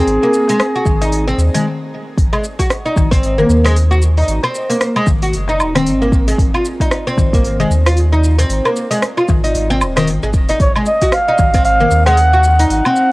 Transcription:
Already playing: C4 G#4
0.07 G#1, open hi-hat, shaker
0.23 A#3, shaker
0.34 shaker
0.48 G#3, open hi-hat, darbuka ka, shaker
0.60 cross-stick, open hi-hat, shaker
0.76 F#4, shaker
0.86 G#1, kick, darbuka ka, darbuka tek, darbuka dum, shaker
1.02 D#4, open hi-hat, darbuka tek, shaker
1.12 open hi-hat, shaker
1.28 C4, shaker
1.38 D#2, shaker
1.54 G#3, open hi-hat, darbuka ka, darbuka dum, shaker
2.18 G#1, kick, open hi-hat, shaker
2.33 G#3, low woodblock, shaker
2.44 shaker
2.59 F#4, kick, open hi-hat, darbuka ka, darbuka tek, shaker
2.70 cross-stick, open hi-hat, shaker
2.86 D#4, shaker
2.97 G#1, kick, darbuka ka, darbuka tek, darbuka dum, shaker
3.12 C4, kick, open hi-hat, shaker
3.23 open hi-hat, shaker
3.38 A#3, darbuka dum, shaker
3.49 D#2, shaker
3.65 G#3, cross-stick, open hi-hat, shaker
3.76 open hi-hat, shaker
3.91 F#4, darbuka tek, shaker
4.02 shaker
4.17 D#4, open hi-hat, darbuka tek, shaker
4.28 G#1, open hi-hat, shaker
4.43 C4, darbuka tek, low woodblock, shaker
4.55 shaker
4.70 A#3, open hi-hat, darbuka ka, shaker
4.81 cross-stick, open hi-hat, shaker
4.96 G#3, low woodblock, shaker
5.07 G#1, kick, darbuka ka, darbuka tek, darbuka dum, shaker
5.22 F#4, open hi-hat, shaker
5.33 F#1, open hi-hat, shaker
5.48 D#4, darbuka tek, shaker
5.60 D#1, low woodblock, shaker
5.75 C4, cross-stick, open hi-hat, darbuka ka, darbuka dum, shaker
5.86 G#1, open hi-hat, shaker
6.02 A#3, shaker
6.12 kick, shaker
6.28 G#3, open hi-hat, shaker
6.38 G#1, kick, open hi-hat, shaker
6.54 F4, low woodblock, shaker
6.65 shaker
6.80 D#4, kick, open hi-hat, darbuka ka, darbuka tek, shaker
6.91 cross-stick, open hi-hat, shaker
7.07 C4, shaker
7.17 G#1, kick, darbuka ka, darbuka tek, darbuka dum, shaker
7.33 A#3, kick, open hi-hat, shaker
7.44 open hi-hat, shaker
7.59 G#3, darbuka dum, shaker
7.70 D#2, shaker
7.86 F4, cross-stick, open hi-hat, shaker
7.97 open hi-hat, shaker
8.12 D#4, darbuka tek, shaker
8.24 shaker
8.38 C4, open hi-hat, darbuka tek, shaker
8.49 G#1, open hi-hat, shaker
8.65 A#3, darbuka tek, low woodblock, shaker
8.76 shaker
8.91 G#3, open hi-hat, darbuka ka, shaker
9.02 cross-stick, open hi-hat, shaker
9.17 F4, low woodblock, shaker
9.28 G#1, kick, darbuka ka, darbuka tek, darbuka dum, shaker
9.44 D#4, open hi-hat, shaker
9.55 G#1, open hi-hat, shaker
9.70 C4, darbuka tek, shaker
9.81 D#1, low woodblock, shaker
9.96 D#3, cross-stick, open hi-hat, darbuka ka, darbuka dum, shaker
10.07 G#1, open hi-hat, shaker
10.23 G#1 G#3, shaker
10.34 D#1, kick, shaker
10.49 D#4, open hi-hat, shaker
10.60 G#1 C#5, kick, open hi-hat, shaker
10.76 G#3, low woodblock, shaker
10.86 D#5, shaker
11.01 F#4, kick, open hi-hat, darbuka ka, darbuka tek, shaker
11.12 F5, cross-stick, open hi-hat, shaker
11.28 D#4, shaker
11.38 G#1, kick, darbuka ka, darbuka tek, darbuka dum, shaker
11.54 C4, kick, open hi-hat, shaker
11.65 F5, open hi-hat, shaker
11.80 A#3, darbuka dum, shaker
11.91 D#2, shaker
12.06 G#3 F#5, cross-stick, open hi-hat, shaker
12.17 open hi-hat, shaker
12.33 F#4, darbuka tek, shaker
12.44 shaker
12.59 D#4, open hi-hat, darbuka tek, shaker
12.70 G#1 F#5, open hi-hat, shaker
12.85 C4, darbuka tek, low woodblock, shaker
12.96 shaker

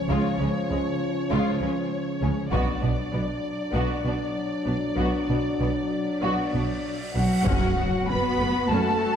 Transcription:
Already playing: C#3 F3 C#5
0.09 C#2 C#3 G#3 F4
0.39 C#2 C#3 G#3 C#4
0.70 C#2 C#3 G#3
1.30 C#2 C#3 G#3 F4
1.61 C#2 C#3 G#3 C#4
2.22 C#2 C#3 G#3 C#4
2.51 B1 B2 F#3 B3 D4 F#4 D5, taiko
2.82 B1 B2 B3 D4
3.12 B1 B2 B3
3.73 B1 B2 B3 F#4
4.04 B1 B2 B3 D4
4.65 B1 B2 B3 D4
4.96 B1 B2 B3 F#4, cymbal swell
5.28 B1 B2 B3 D4
5.60 B1 B2 B3
6.22 B1 B2 B3 F#4
6.53 B1 B2 B3 D4
7.15 B1 B2 F#3 B3 D4 F#4 F#5
7.45 F#1 F#2 C#4 F#4 F#5, taiko, impact
7.77 F#1 B3
8.08 F#1 B3 C#4 B4 B5
8.40 F#1 A3
8.69 F#1 A3 C#4 A4 A5

